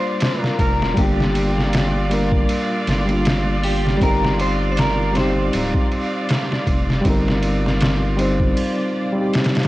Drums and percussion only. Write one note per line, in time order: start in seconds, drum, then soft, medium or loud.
0.20 snare loud
0.20 ride medium
0.44 snare soft
0.59 kick medium
0.59 ride medium
0.82 snare soft
0.97 kick loud
0.97 ride medium
1.20 snare soft
1.35 ride medium
1.58 snare soft
1.73 snare loud
1.73 ride medium
2.11 ride medium
2.32 kick loud
2.49 ride medium
2.87 snare medium
2.87 ride medium
3.09 ride soft
3.25 snare loud
3.25 ride medium
3.63 open hi-hat medium
3.87 snare soft
4.01 kick loud
4.01 ride medium
4.25 snare medium
4.40 ride medium
4.77 snare loud
4.77 ride medium
5.15 snare soft
5.15 ride medium
5.53 ride loud
5.74 kick loud
5.92 ride medium
6.29 snare loud
6.29 ride medium
6.52 snare soft
6.67 kick medium
6.67 ride medium
6.90 snare soft
7.05 kick loud
7.05 ride medium
7.28 snare soft
7.43 ride medium
7.66 snare soft
7.81 snare loud
7.81 ride medium
8.19 ride medium
8.40 kick medium
8.57 ride medium
9.33 snare medium
9.33 ride medium
9.44 snare medium
9.44 ride medium
9.55 snare medium
9.55 ride medium
9.63 ride medium